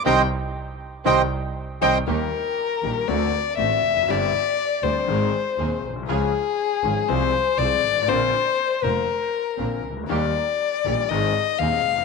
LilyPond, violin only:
\new Staff \with { instrumentName = "Violin" } { \time 4/4 \key c \minor \tempo 4 = 120 g''8 r4. g''8 r4 g''8 | \key ees \major bes'2 d''4 fes''4 | d''4. c''2 r8 | aes'2 c''4 d''4 |
c''4. bes'2 r8 | d''2 ees''4 f''4 | }